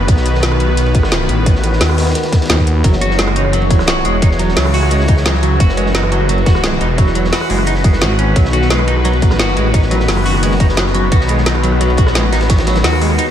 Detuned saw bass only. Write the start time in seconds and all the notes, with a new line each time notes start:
0.08 B1
0.43 B1
1.29 A1
1.81 D#2
2.84 F#1
3.19 F#1
4.05 E1
4.57 C#2
5.60 F#1
5.95 F#1
6.81 E1
7.50 F#1
8.36 B1
8.70 B1
9.57 A1
10.08 F#1
11.12 B1
11.46 B1
12.06 A#1
12.32 A1
12.84 D#2